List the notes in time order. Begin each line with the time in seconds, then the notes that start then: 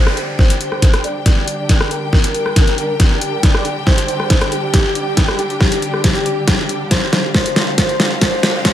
Already playing: D3 G3 D4 G4 C5 G5
0.07 cross-stick
0.17 closed hi-hat
0.39 C5, kick, snare
0.50 closed hi-hat
0.61 closed hi-hat
0.72 cross-stick
0.82 kick, snare, closed hi-hat
0.94 cross-stick, closed hi-hat
1.04 D5, closed hi-hat
1.26 kick, snare, closed hi-hat
1.48 closed hi-hat
1.69 kick, snare, closed hi-hat
1.81 cross-stick
1.91 A#4, closed hi-hat
2.13 kick, snare
2.24 closed hi-hat
2.35 closed hi-hat
2.46 cross-stick
2.56 kick, snare, closed hi-hat
2.68 closed hi-hat
2.78 closed hi-hat
3.00 kick, snare, closed hi-hat
3.21 closed hi-hat
3.43 D5, kick, snare, closed hi-hat
3.54 cross-stick
3.65 closed hi-hat
3.87 C5, kick, snare
3.98 closed hi-hat
4.08 closed hi-hat
4.20 cross-stick
4.30 kick, snare, closed hi-hat
4.41 cross-stick, closed hi-hat
4.52 G4, closed hi-hat
4.74 kick, snare, closed hi-hat
4.95 closed hi-hat
5.17 kick, snare, closed hi-hat
5.28 cross-stick
5.39 G4, closed hi-hat
5.50 closed hi-hat
5.61 kick, snare
5.72 closed hi-hat
5.82 closed hi-hat
5.94 cross-stick
6.04 kick, snare, closed hi-hat
6.15 closed hi-hat
6.26 closed hi-hat
6.48 kick, snare, closed hi-hat
6.69 closed hi-hat
6.91 C5 F5, kick, snare, closed hi-hat, riser
7.13 snare, closed hi-hat
7.34 C5, kick, snare
7.46 closed hi-hat
7.56 snare, closed hi-hat
7.78 C5, kick, snare, closed hi-hat
7.89 closed hi-hat
8.00 snare, closed hi-hat
8.21 C5, kick, snare, closed hi-hat
8.43 snare, closed hi-hat
8.65 C5, kick, snare, closed hi-hat